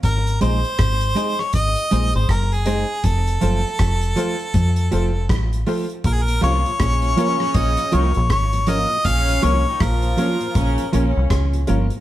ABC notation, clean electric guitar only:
X:1
M:4/4
L:1/8
Q:"Swing 16ths" 1/4=80
K:Bbm
V:1 name="Clean electric guitar"
z [A,CEA] z [A,CEA] z [A,CEA] z [A,CEA] | z [F,=A,CF] z [F,A,CF] z [F,A,CF] z [F,A,CF] | z [F,B,DF] z [F,B,DF] z [F,B,DF] z [F,B,DF] | z [F,B,DF] z [F,B,DF] z [F,B,DF] z [F,B,DF] |]